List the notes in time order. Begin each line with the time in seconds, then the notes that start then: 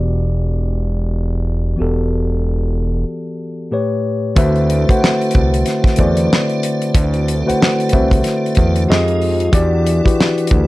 Already playing: E1 E3 B3 F#4 G4 D5
1.76 E3 B3 F#4 G4
1.81 E1 A4
3.71 A2 A3 G4 B4 C#5
4.35 D2 D3 A3 C4 E4 F#4 A4 B4 C5 E5, kick, closed hi-hat
4.56 closed hi-hat
4.70 closed hi-hat
4.88 C2 D3 A3 F#4 B4 C5 F#5, kick, closed hi-hat
5.04 snare
5.21 closed hi-hat
5.31 closed hi-hat
5.35 C2, kick
5.54 closed hi-hat
5.66 snare, closed hi-hat
5.84 kick, snare, closed hi-hat
5.96 E2 D3 A3 F#4 B4 C5 D5, kick, closed hi-hat
6.17 closed hi-hat
6.33 snare
6.50 closed hi-hat
6.63 closed hi-hat
6.82 closed hi-hat
6.95 D2, kick, closed hi-hat
7.14 closed hi-hat
7.28 closed hi-hat
7.46 C2 D3 A3 F#4 B4 C5 F#5, closed hi-hat
7.62 snare
7.80 closed hi-hat
7.89 D3 A3 F#4 B4 C5, kick, closed hi-hat
7.93 C2 E5
8.11 kick, closed hi-hat
8.24 snare, closed hi-hat
8.46 closed hi-hat
8.55 E2, kick, closed hi-hat
8.76 closed hi-hat
8.87 F2 F3 G#3 D#4 F4 G4 G#4 D#5
8.92 snare
9.08 closed hi-hat
9.22 open hi-hat
9.40 closed hi-hat
9.52 E2 E3 D4 E4 F#4 G4 D5 F#5, kick, closed hi-hat
9.87 closed hi-hat
10.04 D2 E3 E4 F#4 G4 B4, kick, closed hi-hat
10.21 snare
10.38 closed hi-hat
10.47 kick, closed hi-hat
10.52 D2